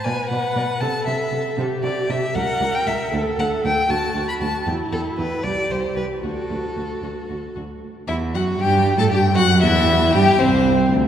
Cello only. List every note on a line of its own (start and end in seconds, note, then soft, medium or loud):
0.06 0.14 B2 medium
0.31 0.39 B2 medium
0.55 0.63 B2 medium
0.81 0.89 C3 medium
1.07 1.15 C3 medium
1.32 1.40 C3 medium
1.58 1.66 C3 medium
1.83 1.91 C3 medium
2.09 2.17 C3 medium
2.35 2.43 C#2 medium
2.61 2.69 C#2 medium
2.87 2.95 C#2 medium
3.12 3.20 D2 medium
3.38 3.46 D2 medium
3.64 3.72 D2 medium
3.89 3.97 D2 medium
4.15 4.23 D2 medium
4.41 4.49 D2 medium
4.67 4.75 E2 medium
4.92 5.00 E2 medium
5.18 5.26 E2 medium
5.44 5.52 C2 medium
5.71 5.79 C2 medium
5.97 6.05 C2 soft
6.23 6.31 D2 medium
6.50 6.58 D2 medium
6.77 6.85 D2 soft
7.03 7.11 D2 soft
7.30 7.38 D2 soft
7.56 7.64 D2 soft
8.08 8.35 E2 medium
8.34 8.58 F#2 medium
8.59 8.97 G2 loud
8.98 9.03 A2 medium
9.11 9.38 G2 medium
9.37 9.64 F#2 loud
9.62 10.13 E2 loud
10.14 10.22 G2 loud
10.39 10.90 C2 medium
10.91 11.08 D2 medium